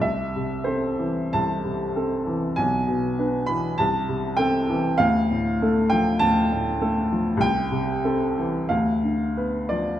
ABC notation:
X:1
M:4/4
L:1/8
Q:1/4=97
K:Am
V:1 name="Upright piano"
e2 c2 a3 z | ^g3 b a2 =g2 | f3 g a4 | g4 f3 d |]
V:2 name="Upright piano" clef=bass
C,, C, [CA] E, C,, C, [CA] E, | B,,, B,, [DB] E, C,, C, [CA] E, | D,, A,, [A,A] F, D,, A,, [A,A] F, | C,, C, [CA] E, D,, D, [B,B] F, |]